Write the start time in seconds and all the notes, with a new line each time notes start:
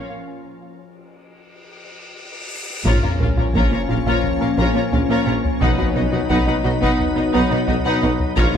Already playing: A#4 F5
0.10 cymbal swell
2.85 A#1 A#2 F3 A#3 C#4 F4 C#5 A#5, taiko, sub drop
3.02 A#2 F4 C#5 A#5, taiko low
3.19 A#1 A#2 F4 A#4 F5
3.37 A#2 F4 C#5 A#5, taiko low
3.54 A#1 A#2 A#3 F4 C#5 A#5, taiko
3.71 A#2 C#4 F4 C#5 A#5
3.88 A#1 A#2 F4 A#4 F5
4.05 A#2 A#3 F4 C#5 A#5, taiko
4.24 taiko low
4.41 A#2 F4 A#4 F5
4.57 A#1 A#2 A#3 F4 C#5 A#5
4.74 A#2 C#4 F4 C#5 A#5
4.91 A#1 A#2 C#4 F4 A#4 F5, taiko low
5.08 A#2 A#3 F4 C#5 A#5
5.26 A#1 A#2 C#4 F4 C#5 A#5
5.45 taiko low
5.60 B1 B2 F#3 B3 D#4 B4 F#5, taiko
5.78 B2 D#4 F#4 B4 F#5, taiko low
5.94 B1 B2 D#4 F#4 B4 D#5
6.12 B2 D#4 F#4 B4 F#5, taiko low
6.29 B1 B2 B3 D#4 B4 F#5, taiko
6.46 B2 D#4 B4 F#5
6.63 B1 B2 D#4 F#4 D#5
6.81 B2 B3 D#4 B4 F#5, taiko
6.99 taiko low
7.15 B2 D#4 F#4 B4 D#5
7.32 B1 B2 B3 D#4 B4 F#5
7.50 B2 D#4 B4 F#5
7.68 B1 B2 D#4 F#4 D#5, taiko low
7.84 B2 B3 D#4 B4 F#5
8.02 B1 B2 D#4 B4 F#5
8.20 taiko low
8.36 A#1 A#2 F3 A#3 C#4 F4 A#4 C#5 A#5, taiko
8.54 A#5